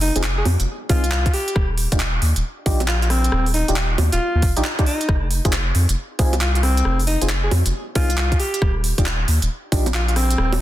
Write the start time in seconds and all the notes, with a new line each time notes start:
Already playing: F1
0.01 D#4, open hi-hat
0.16 F1 C4 D#4 F4 G#4, closed hi-hat
0.23 clap, closed hi-hat
0.38 G#4
0.45 F2, open hi-hat, high bongo
0.60 F1, closed hi-hat
0.89 C2 C4 D#4 F4 G#4, kick, open hi-hat
1.04 closed hi-hat
1.12 clap
1.26 kick, closed hi-hat
1.34 G4, open hi-hat
1.48 closed hi-hat
1.56 D#1, kick, cross-stick
1.78 open hi-hat
1.92 D#1 D4 D#4 F4 G4, kick, closed hi-hat
2.00 clap, closed hi-hat
2.22 D#2, open hi-hat
2.36 D#1, closed hi-hat
2.66 A#1 D4 D#4 F4 G4, kick, open hi-hat
2.80 closed hi-hat, high bongo
2.88 F4, clap
3.02 F4, closed hi-hat
3.10 C4, cross-stick, open hi-hat
3.24 closed hi-hat
3.32 D#1, cross-stick
3.46 open hi-hat
3.54 D#4, open hi-hat
3.68 D#1 D4 D#4 F4 G4, closed hi-hat
3.76 clap, closed hi-hat
3.98 D#2, open hi-hat, high bongo
4.12 D#1 F4, closed hi-hat
4.35 D#2
4.42 D#1, kick, open hi-hat
4.57 A#1 D4 D#4 F4 G4, closed hi-hat
4.64 clap
4.79 D4 D#4 F4 G4, kick, cross-stick, closed hi-hat
4.86 D#4, open hi-hat
5.01 closed hi-hat
5.09 F1, kick, cross-stick
5.31 open hi-hat
5.45 F1 C4 D#4 F4 G#4, kick, closed hi-hat
5.53 clap, closed hi-hat
5.75 F2, open hi-hat
5.89 F1, closed hi-hat
6.19 C2 C4 D#4 F4 G#4, kick, open hi-hat
6.33 closed hi-hat, high bongo
6.41 F4, clap
6.55 F4, closed hi-hat
6.63 C4, cross-stick, open hi-hat
6.77 closed hi-hat
6.85 F1, cross-stick
6.99 open hi-hat
7.07 D#4, open hi-hat
7.22 F1 C4 D#4 F4 G#4, closed hi-hat
7.29 clap, closed hi-hat
7.44 G#4
7.51 F2, open hi-hat, high bongo
7.66 F1, closed hi-hat
7.95 C2 C4 D#4 F4 G#4, kick, open hi-hat
8.10 closed hi-hat
8.18 clap
8.32 kick, closed hi-hat
8.39 G4, open hi-hat
8.54 closed hi-hat
8.62 D#1, kick, cross-stick
8.84 open hi-hat
8.98 D#1 D4 D#4 F4 G4, kick, closed hi-hat
9.06 clap, closed hi-hat
9.28 D#2, open hi-hat
9.42 D#1, closed hi-hat
9.72 A#1 D4 D#4 F4 G4, kick, open hi-hat
9.86 closed hi-hat, high bongo
9.94 F4, clap
10.08 F4, closed hi-hat
10.16 C4, cross-stick, open hi-hat
10.30 closed hi-hat
10.38 D#1, cross-stick
10.53 open hi-hat, high bongo